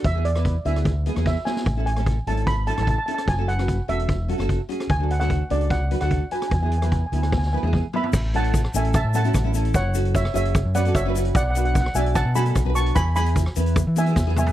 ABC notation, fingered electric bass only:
X:1
M:4/4
L:1/16
Q:1/4=148
K:A
V:1 name="Fingered electric bass" clef=bass
E,,6 D,,4- D,, E,,2 z3 | A,,,6 G,,,4- G,,, A,,,2 z3 | F,,,6 E,,,4- E,,, F,,,2 z3 | D,,6 C,,4- C,, D,,2 z3 |
E,,6 D,,4- D,, E,,2 z3 | A,,,6 A,,,3 A,,3 A,,,4 | F,,,6 F,,,3 F,,3 F,,,4 | B,,,6 B,,,3 B,,3 B,,,4 |
E,,6 E,,3 E,3 E,,4 |]